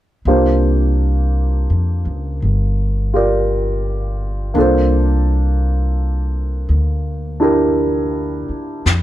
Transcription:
0.25 C2 A#3 D4 F4 G4 C5
1.70 F2
2.05 C#2
2.42 G1
3.14 F4 G4 A#4 D5
4.54 C2 A#3 D4 F4
4.58 A4 C5
6.69 D2
7.40 D4 E4 G4 A#4
8.49 muted upright bass stroke
8.86 F2, brush sweep, snare

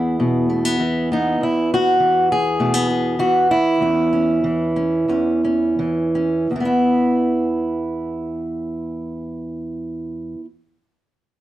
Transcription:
Already playing: E2 E3 B3 E4 G#4
0.20 B2
0.49 A3
0.65 B3
0.80 E3
1.12 B3 D#4
1.41 E2 E4
1.74 F#4
2.00 E3
2.32 G#4
2.60 B2 A3
2.74 B3
2.90 G#4
3.19 E3 F#4
3.51 E4
3.81 E2 C#4
4.13 C#4
4.44 E3
4.76 C#4
5.08 E2 C#4
5.45 C#4
5.79 E3
6.15 C#4
6.51 E2
6.56 E3
6.60 B3
6.65 E4

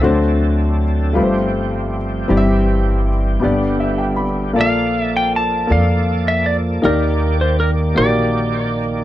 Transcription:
Already playing: C4 A4
0.01 D2 D3 F#3 A3 D4 F#4 C5
1.13 G1 G2 F3 A3 C4 F4 G4 B4
1.23 C5
2.28 G1 G2 E3 G3 C4 E4 G4 D5
2.37 E5
3.40 G2 D3 G3 B3 D4 G4
3.44 G1 D5
3.80 E5
3.98 G5
4.16 B5
4.53 A#1 A#2 F3 A#3 F4 A4 D5
4.61 F5
5.02 E5
5.17 G5
5.36 A5
5.67 F2 A#3 F4 A4 D5
5.72 F5
6.28 E5
6.46 D5
6.82 D#2 D#3 A#3 D#4 G4 A#4 D5
7.41 C5
7.60 A#4
7.95 A#1 A#3 D#4 F#4 A#4 D5
8.04 G4

